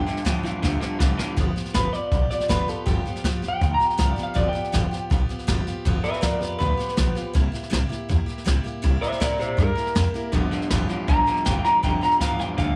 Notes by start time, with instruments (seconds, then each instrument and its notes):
Already playing: clean electric guitar G5
0.06 clean electric guitar G2 D3, steel-string acoustic guitar F3 B3 F4 G4, muted upright bass stroke, snare
0.17 snare
0.25 upright bass D2, steel-string acoustic guitar G2 D3 F3 B3 F4 G4, clean electric guitar G2 E3, kick, snare, hi-hat pedal
0.43 upright bass F2, clean electric guitar G2 E3, steel-string acoustic guitar F3 B3 F4 G4, snare
0.62 upright bass D2, clean electric guitar G2 D3, steel-string acoustic guitar F3 B3 F4 G4, kick, snare
0.80 clean electric guitar G2 D3, steel-string acoustic guitar F3 B3 F4 G4, muted upright bass stroke, snare
0.99 upright bass C2, clean electric guitar G2 E3, steel-string acoustic guitar G2 D3 F3 B3 F4 G4, kick, snare, hi-hat pedal
1.18 clean electric guitar G2 E3, steel-string acoustic guitar F3 B3 F4 G4, muted upright bass stroke, snare
1.36 upright bass G1, steel-string acoustic guitar G2 D3 F3 B3 F4 G4, kick, snare
1.55 steel-string acoustic guitar F3 B3 F4 G4, muted upright bass stroke, snare
1.65 snare
1.74 upright bass G1, steel-string acoustic guitar G2 D3 F3 B3 F4 G4, clean electric guitar B4, kick, snare, hi-hat pedal
1.93 steel-string acoustic guitar F3 B3 F4 G4, clean electric guitar D5, snare
2.12 upright bass B1, steel-string acoustic guitar F3 B3 F4 G4, kick, snare
2.30 steel-string acoustic guitar F3 B3 F4 G4, clean electric guitar D5, muted upright bass stroke, snare
2.40 snare
2.48 upright bass G1, steel-string acoustic guitar G2 D3 F3 B3 F4 G4, clean electric guitar B4, kick, snare, hi-hat pedal
2.68 steel-string acoustic guitar F3 B3 F4 G4, clean electric guitar A4, snare
2.86 upright bass G1, steel-string acoustic guitar G2 D3 F3 B3 F4 G4, clean electric guitar G4, kick, snare
3.05 steel-string acoustic guitar F3 B3 F4 G4, muted upright bass stroke, snare
3.16 snare
3.24 upright bass D2, steel-string acoustic guitar G2 D3 F3 B3 F4 G4, kick, snare, hi-hat pedal
3.42 upright bass F2, steel-string acoustic guitar F3 B3 F4 G4, snare
3.48 clean electric guitar G5
3.61 upright bass D2, steel-string acoustic guitar F3 B3 F4 G4, kick, snare
3.74 clean electric guitar A#5
3.80 steel-string acoustic guitar F3 B3 F4 G4, muted upright bass stroke, snare
3.85 clean electric guitar G5
3.90 snare
3.97 upright bass C2, steel-string acoustic guitar G2 D3 F3 B3 F4 G4, clean electric guitar F5, kick, snare, hi-hat pedal
4.10 clean electric guitar D5
4.16 steel-string acoustic guitar F3 B3 F4 G4, muted upright bass stroke, snare
4.23 clean electric guitar F5
4.34 upright bass G1, steel-string acoustic guitar G2 D3 F3 B3 F4 G4, clean electric guitar D5, kick, snare
4.49 clean electric guitar G5
4.53 steel-string acoustic guitar F3 B3 F4 G4, muted upright bass stroke, snare
4.64 snare
4.72 upright bass G1, steel-string acoustic guitar G2 D3 F3 B3 F4 G4, kick, snare, hi-hat pedal
4.91 steel-string acoustic guitar F3 B3 F4 G4, muted upright bass stroke, snare
5.10 upright bass B1, steel-string acoustic guitar F3 B3 F4 G4, kick, snare
5.29 steel-string acoustic guitar F3 B3 F4 G4, muted upright bass stroke, snare
5.39 snare
5.47 upright bass G1, steel-string acoustic guitar G2 D3 F3 B3 F4 G4, kick, snare, hi-hat pedal
5.66 steel-string acoustic guitar F3 B3 F4 G4, muted upright bass stroke, snare
5.85 upright bass G1, steel-string acoustic guitar G2 D3 F3 B3 F4 G4, kick, snare
6.03 steel-string acoustic guitar F3 B3 F4 G4, clean electric guitar B4 E5, muted upright bass stroke, snare
6.13 snare
6.21 upright bass D2, steel-string acoustic guitar G2 D3 F3 B3 F4 G4, clean electric guitar A#4 D5, kick, snare, hi-hat pedal
6.40 upright bass F2, steel-string acoustic guitar F3 B3 F4 G4, clean electric guitar G4 B4, snare
6.59 upright bass D2, steel-string acoustic guitar F3 B3 F4 G4, clean electric guitar B4, kick, snare
6.77 steel-string acoustic guitar F3 B3 F4 G4, muted upright bass stroke, snare
6.89 snare
6.97 upright bass B1, steel-string acoustic guitar G2 D3 F3 B3 F4 G4, kick, snare, hi-hat pedal
7.15 steel-string acoustic guitar F3 B3 F4 G4, muted upright bass stroke, snare
7.33 upright bass C2, steel-string acoustic guitar C3 G3 A#3 E4 G4, kick, snare
7.52 steel-string acoustic guitar A#3 E4 G4, muted upright bass stroke, snare
7.63 snare
7.70 upright bass C2, steel-string acoustic guitar C3 G3 A#3 E4 G4, kick, snare, hi-hat pedal
7.89 steel-string acoustic guitar A#3 E4 G4, muted upright bass stroke, snare
8.09 upright bass E2, steel-string acoustic guitar G3 A#3 E4 G4, kick, snare
8.26 steel-string acoustic guitar A#3 E4 G4, muted upright bass stroke, snare
8.38 snare
8.45 upright bass C2, steel-string acoustic guitar C3 G3 A#3 E4 G4, kick, snare, hi-hat pedal
8.64 steel-string acoustic guitar A#3 E4 G4, muted upright bass stroke, snare
8.82 upright bass C2, steel-string acoustic guitar C3 G3 A#3 E4 G4, kick, snare
9.01 steel-string acoustic guitar A#3 E4 G4, clean electric guitar C5 E5, muted upright bass stroke, snare
9.12 snare
9.20 upright bass G2, steel-string acoustic guitar C3 G3 A#3 E4 G4, clean electric guitar A#4 D5, kick, snare, hi-hat pedal
9.38 upright bass A#2, steel-string acoustic guitar A#3 E4 G4, clean electric guitar G4 C5, snare
9.57 upright bass G2, steel-string acoustic guitar G3 A#3 E4 G4, clean electric guitar A#4, kick, snare
9.75 steel-string acoustic guitar A#3 E4 G4, muted upright bass stroke, snare
9.87 snare
9.95 upright bass F2, steel-string acoustic guitar C3 G3 A#3 E4 G4, kick, snare, hi-hat pedal
10.14 steel-string acoustic guitar A#3 E4 G4, muted upright bass stroke, snare
10.32 upright bass G1, steel-string acoustic guitar G2 D3 F3 B3 F4 G4, clean electric guitar G2 D3, kick, snare
10.51 clean electric guitar G2 D3, steel-string acoustic guitar F3 B3 F4 G4, muted upright bass stroke, snare
10.62 snare
10.70 upright bass G1, clean electric guitar G2 E3, steel-string acoustic guitar G2 D3 F3 B3 F4 G4, kick, snare, hi-hat pedal
10.88 clean electric guitar G2 E3, steel-string acoustic guitar F3 B3 F4 G4, snare
11.08 upright bass B1, clean electric guitar G2 D3 A#5, steel-string acoustic guitar F3 B3 F4 G4, kick, snare
11.26 clean electric guitar G2 D3, steel-string acoustic guitar F3 B3 F4 G4, muted upright bass stroke, snare
11.36 snare
11.45 upright bass G1, steel-string acoustic guitar G2 D3 F3 B3 F4 G4, clean electric guitar G2 E3 G5, kick, snare, hi-hat pedal
11.64 clean electric guitar G2 E3 A#5, steel-string acoustic guitar F3 B3 F4 G4, muted upright bass stroke, snare
11.83 upright bass G1, steel-string acoustic guitar G2 D3 F3 B3 F4 G4, clean electric guitar G2 D3 G5, kick, snare
12.01 clean electric guitar G2 D3 A#5, steel-string acoustic guitar F3 B3 F4 G4, muted upright bass stroke, snare
12.11 snare
12.20 upright bass D2, clean electric guitar G2 E3 F5, steel-string acoustic guitar G2 D3 F3 B3 F4 G4, kick, snare, hi-hat pedal
12.38 upright bass F2, clean electric guitar G2 E3 G5, steel-string acoustic guitar F3 B3 F4 G4, snare
12.57 upright bass D2, clean electric guitar G2 D3 F5, steel-string acoustic guitar F3 B3 F4 G4, kick, snare